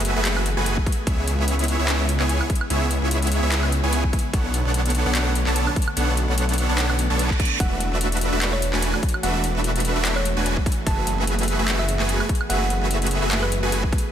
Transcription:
Already playing: F#1 E3 A3 B3 F#4 G#4 B4 E5
0.00 closed hi-hat
0.05 closed hi-hat
0.16 F#1 A3 F#4 G#4 B4 E5
0.25 clap, closed hi-hat
0.37 high woodblock
0.46 closed hi-hat
0.57 F#1 A3 F#4 G#4 B4 G#5
0.66 closed hi-hat
0.77 kick
0.86 kick, closed hi-hat
0.92 closed hi-hat
1.06 C#2 C#3 G#3 B3 E4 G#4 C#5 E5, kick, closed hi-hat
1.27 closed hi-hat
1.38 C#2 B3 E4 G#4 C#5 E5
1.48 closed hi-hat
1.59 closed hi-hat
1.64 closed hi-hat
1.68 closed hi-hat
1.79 C#2 B3 E4 G#4 C#5 E5
1.88 clap, closed hi-hat
2.09 closed hi-hat
2.20 C#2 B3 E4 G#4 C#5 G#5, clap
2.29 closed hi-hat
2.41 high woodblock
2.50 kick, closed hi-hat
2.55 closed hi-hat
2.61 high woodblock
2.70 C#2 B3 E4 G#4 C#5 E5, closed hi-hat
2.91 closed hi-hat
3.02 C#2 B3 E4 G#4 C#5 E5
3.11 closed hi-hat
3.22 closed hi-hat
3.27 closed hi-hat
3.32 closed hi-hat
3.43 C#2 B3 E4 G#4 C#5 E5
3.52 clap, closed hi-hat
3.63 high woodblock
3.72 closed hi-hat
3.83 C#2 B3 E4 G#4 C#5 G#5
3.93 closed hi-hat
4.04 kick
4.13 kick, closed hi-hat
4.19 closed hi-hat
4.33 B1 D3 A3 B3 D4 A4 C#5 F#5, kick, closed hi-hat
4.54 closed hi-hat
4.65 B1 B3 D4 A4 C#5 F#5
4.74 closed hi-hat
4.86 closed hi-hat
4.90 closed hi-hat
4.95 closed hi-hat
5.06 B1 B3 D4 A4 C#5 F#5
5.15 clap, closed hi-hat
5.35 closed hi-hat
5.47 B1 B3 D4 A4 C#5 A5, clap
5.56 closed hi-hat
5.67 high woodblock
5.76 kick, closed hi-hat
5.82 closed hi-hat
5.88 high woodblock
5.97 B1 B3 D4 A4 C#5 F#5, closed hi-hat
6.17 closed hi-hat
6.28 B1 B3 D4 A4 C#5 F#5
6.38 closed hi-hat
6.49 closed hi-hat
6.54 closed hi-hat
6.58 closed hi-hat
6.69 B1 B3 D4 A4 C#5 F#5
6.78 clap, closed hi-hat, reverse cymbal
6.90 high woodblock
6.99 closed hi-hat
7.10 B1 B3 D4 A4 C#5 A5
7.19 closed hi-hat
7.30 kick, clap
7.40 kick, closed hi-hat
7.45 closed hi-hat
7.60 E1 E3 A3 D4 F#4 B4 E5 F#5, kick, closed hi-hat
7.80 closed hi-hat
7.92 E1 A3 D4 F#4 B4 E5
8.01 closed hi-hat
8.12 closed hi-hat
8.17 closed hi-hat
8.21 closed hi-hat
8.32 E1 A3 D4 F#4 B4 E5
8.42 clap, closed hi-hat
8.53 C#5
8.62 closed hi-hat
8.73 E1 A3 D4 F#4 B4 G#5, clap
8.82 closed hi-hat
8.94 high woodblock
9.03 kick, closed hi-hat
9.09 closed hi-hat
9.14 high woodblock
9.23 E1 A3 D4 F#4 B4 E5 F#5, closed hi-hat
9.44 closed hi-hat
9.55 E1 A3 D4 F#4 B4 E5
9.64 closed hi-hat
9.76 closed hi-hat
9.80 closed hi-hat
9.85 closed hi-hat
9.96 E1 A3 D4 F#4 B4 E5
10.05 clap, closed hi-hat
10.16 C#5, high woodblock
10.25 closed hi-hat
10.37 E1 A3 D4 F#4 B4 G#5
10.46 closed hi-hat
10.57 kick
10.66 B3 G#4, kick, closed hi-hat
10.72 closed hi-hat
10.86 F#1 A3 F#4 G#4 B4 E5 A5, kick, closed hi-hat
11.07 closed hi-hat
11.18 F#1 A3 F#4 G#4 B4 E5
11.27 closed hi-hat
11.39 closed hi-hat
11.43 closed hi-hat
11.48 closed hi-hat
11.59 F#1 A3 F#4 G#4 B4 E5
11.68 clap, closed hi-hat
11.79 E5
11.89 closed hi-hat
12.00 F#1 A3 F#4 G#4 B4 G#5, clap
12.09 closed hi-hat
12.20 high woodblock
12.29 kick, closed hi-hat
12.35 closed hi-hat
12.41 high woodblock
12.50 F#1 A3 F#4 G#4 B4 E5 F#5, closed hi-hat
12.70 closed hi-hat
12.81 F#1 A3 F#4 G#4 B4 E5
12.91 closed hi-hat
13.02 closed hi-hat
13.07 closed hi-hat
13.11 closed hi-hat
13.22 F#1 A3 F#4 G#4 B4 E5
13.31 clap, closed hi-hat
13.42 B4, high woodblock
13.52 closed hi-hat
13.63 F#1 A3 F#4 G#4 B4 G#5
13.72 closed hi-hat
13.83 kick
13.93 kick, closed hi-hat
13.98 closed hi-hat

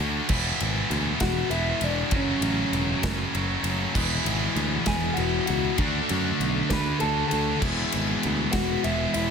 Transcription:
Already playing: D3 A3 D4 F#4
0.00 D2
0.28 E1 E2 B2 E3 G#3 B3 E4, kick, crash
0.32 E3
0.60 G#1, ride
0.90 D2, ride
1.20 E1 F#4 F#5, kick, snare, ride
1.50 E1 E3 G#3 B3 E4 E5, ride
1.81 E1 D5, ride
1.85 D4
2.11 F#1 F#2 C#3 F#3 A3 C#4 F#4, kick, ride
2.16 C#4 C#5
2.41 A1, ride
2.72 E1, ride
3.03 F#1, kick, snare, ride
3.33 F#1 F#3 A3 C#4 F#4, ride
3.63 F#1, ride
3.94 E1 E2 B2 E3 G#3 B3 E4, kick, crash
3.98 G#4
4.25 G#1, ride
4.56 D2, ride
4.86 E1 G#4 G#5, kick, snare, ride
5.14 E1 E3 F#5, ride
5.18 G#3 B3 E4 F#4
5.46 C#2 F#4 F#5, ride
5.77 D2 D3 A3 D4 F#4, kick, ride
5.82 D4
6.09 F#2, ride
6.40 B1, ride
6.69 D2 B4 B5, kick, snare, ride
7.00 D2 D3 A3 D4 A4 A5, ride
7.04 F#4
7.28 A4 A5, ride
7.33 D2
7.59 E1 E2 B2 E3, kick, crash
7.64 E3 G#3 B3 E4
7.92 G#1, ride
8.23 D2, ride
8.52 E1 F#4 F#5, kick, snare, ride
8.83 E1 E3 G#3 B3 E4 E5, ride
9.14 E1 E4 E5, ride

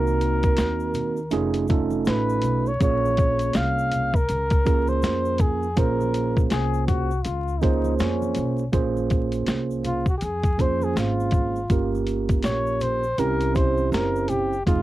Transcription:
Already playing: C2 A#3 C4 D#4 F#4 A#4
0.07 high conga, shaker
0.21 closed hi-hat, shaker
0.43 kick, closed hi-hat, shaker
0.57 D#2, snare, closed hi-hat, shaker
0.80 shaker
0.94 closed hi-hat, low conga, shaker
1.17 shaker
1.31 F1 A3 C#4 D#4 F4 G#4, closed hi-hat, high conga, shaker
1.54 closed hi-hat, shaker
1.68 A3 C#4 D#4 F4 A4, kick, closed hi-hat, shaker
1.90 high conga, shaker
2.05 A1 B4, snare, closed hi-hat, shaker
2.29 shaker
2.42 B1, closed hi-hat, low conga, shaker
2.66 C#5, shaker
2.80 A#1 A#3 C#4 F4 G#4 C#5, kick, closed hi-hat, shaker
3.05 high conga, shaker
3.17 kick, closed hi-hat, shaker
3.39 closed hi-hat, shaker
3.53 C2 F5, snare, closed hi-hat, shaker
3.79 shaker
3.91 closed hi-hat, low conga, shaker
4.14 A#4, kick, shaker
4.29 C#2, closed hi-hat, high conga, shaker
4.50 kick, closed hi-hat, shaker
4.65 A#3 C#4 F4 G#4 A#4, kick, closed hi-hat, shaker
4.87 C5, high conga, shaker
5.02 F2, snare, closed hi-hat, shaker
5.25 shaker
5.38 G#4, kick, closed hi-hat, low conga, shaker
5.63 shaker
5.76 A#1 A#3 C#4 F4 G#4 A#4 C5, kick, closed hi-hat, shaker
6.01 high conga, shaker
6.14 closed hi-hat, shaker
6.37 kick, shaker
6.50 C2 G#4, snare, closed hi-hat, shaker
6.74 shaker
6.87 F#4, kick, closed hi-hat, low conga, shaker
7.11 shaker
7.24 C#2 F4, closed hi-hat, high conga, shaker
7.48 shaker
7.60 A#3 C#4 D#4 F4 G#4 C5, kick, closed hi-hat, shaker
7.84 high conga, shaker
7.98 F2 C#4, snare, closed hi-hat, shaker
8.22 high conga, shaker
8.35 B1, closed hi-hat, high conga, low conga, shaker
8.58 shaker
8.72 A#1 A#3 C#4 F4 G#4 C5, kick, closed hi-hat, shaker
8.97 high conga, shaker
9.10 kick, closed hi-hat, shaker
9.32 closed hi-hat, shaker
9.46 C2, snare, closed hi-hat, shaker
9.71 shaker
9.84 F4, closed hi-hat, low conga, shaker
10.06 F#4, kick, shaker
10.18 G4, closed hi-hat, high conga, shaker
10.22 F2 G#4
10.43 kick, closed hi-hat, shaker
10.58 A#3 C#4 F4 G#4 C5, kick, closed hi-hat, low conga, shaker
10.81 G#4, high conga, shaker
10.96 G#1 F4, snare, closed hi-hat, shaker
11.20 shaker
11.31 kick, closed hi-hat, low conga, shaker
11.56 shaker
11.70 G1 A#3 C#4 F4 G4 A#4, kick, closed hi-hat, shaker
11.95 high conga, shaker
12.07 closed hi-hat, shaker
12.29 kick, closed hi-hat, shaker
12.43 A#1 C#5, snare, closed hi-hat, shaker
12.67 shaker
12.81 C5, closed hi-hat, low conga, shaker
13.03 shaker
13.18 C2 C4 C#4 E4 G4 A#4, closed hi-hat, high conga, shaker
13.41 closed hi-hat, shaker
13.54 C4 C#4 E4 G4 C5, kick, closed hi-hat, low conga, shaker
13.77 high conga, shaker
13.92 F#1 A#4, snare, closed hi-hat, shaker
14.16 shaker
14.28 G4, closed hi-hat, low conga, shaker
14.53 shaker
14.66 F1 G#3 C4 D#4 F4 G#4, kick, closed hi-hat, shaker

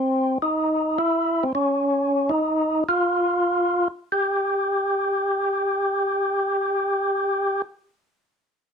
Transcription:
Already playing: C4
0.42 D#4
0.99 E4
1.43 C4
1.55 C#4
2.29 D#4
2.89 F4
4.12 G4

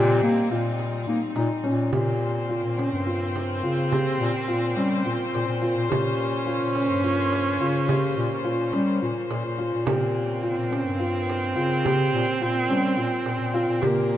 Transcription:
Already playing: A#2 G3 C4 D#4 G4
0.23 A#3
0.51 A#2 F4, frame drum
0.79 frame drum
1.07 A#3 D#4
1.36 A#2 D#4, frame drum
1.64 A#2 C#4, frame drum
1.92 A#2 C#3 A#3 C4 G4 C5, frame drum
2.50 F4
2.64 A#2
2.78 C#4, frame drum
2.92 G2
3.06 F4, frame drum
3.36 frame drum
3.63 C#3 F4
3.92 G4, frame drum
4.19 A#2
4.48 A#2 F4
4.76 G3 C#4, frame drum
5.05 A#2 F4, frame drum
5.34 A#2, frame drum
5.47 A#2
5.62 F4
5.76 A#2
5.89 A#2 C#4 G4, frame drum
6.47 F4
6.62 A#2
6.75 C#4, frame drum
6.89 G2
7.04 F4, frame drum
7.32 frame drum
7.60 C#3 F4
7.88 G4, frame drum
8.17 A#2
8.44 A#2 F4
8.73 G3 C#4, frame drum
9.02 A#2 F4, frame drum
9.30 A#2, frame drum
9.45 A#2
9.58 F4
9.73 A#2
9.86 A#2 C4 G4, frame drum
10.43 F4
10.58 A#2
10.71 C#4, frame drum
10.86 G2
10.99 F4, frame drum
11.30 frame drum
11.56 C#3 F4
11.84 G4, frame drum
12.13 A#2
12.41 A#2 F4
12.69 G3 C#4, frame drum
12.97 A#2 F4, frame drum
13.26 A#2, frame drum
13.40 A#2
13.54 F4
13.68 A#2
13.82 A#2 A#3 G4, frame drum

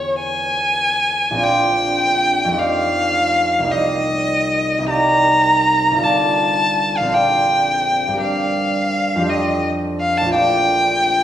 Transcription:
Already playing: E2 B3 E4 G4 B4 C#5
0.19 G#5
1.31 A#1 C4
1.37 D4 F4
1.42 D5 G5
2.44 F2 A3
2.50 D#4 G4
2.57 D5 F5
3.59 C2 A#3
3.65 D#4 G4
3.71 D5 D#5
4.79 C2 A#3
4.84 D#4 G4
4.90 D5 A#5
5.91 G1 A#3
5.97 F4 A4
6.03 D5 A5
6.97 A#1 F5
7.03 C4 F4
7.09 A4 D5
7.14 G5
8.07 G2 D4
8.13 G4 A#4
8.19 D5 F5
9.16 F2 D4
9.21 G4 A4
9.27 D5 D#5
10.00 F5
10.18 A#1 A5
10.24 A3 F4
10.30 A#4 D5
10.35 G5

